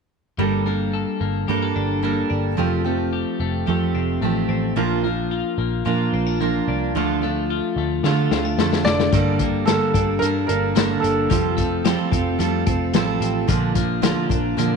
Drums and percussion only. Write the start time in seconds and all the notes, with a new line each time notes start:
8.04 snare
8.31 snare
8.59 snare
8.73 snare
8.86 snare
9.00 snare
9.13 kick, closed hi-hat
9.39 kick, closed hi-hat
9.67 snare, closed hi-hat
9.94 kick, closed hi-hat
10.22 closed hi-hat
10.49 closed hi-hat
10.76 snare, closed hi-hat
11.04 closed hi-hat
11.31 kick, closed hi-hat
11.58 kick, closed hi-hat
11.85 snare, closed hi-hat
12.12 kick, closed hi-hat
12.40 closed hi-hat
12.67 kick, closed hi-hat
12.94 snare, closed hi-hat
13.22 closed hi-hat
13.48 kick, closed hi-hat
13.75 kick, closed hi-hat
14.03 snare, closed hi-hat
14.30 kick, closed hi-hat
14.58 closed hi-hat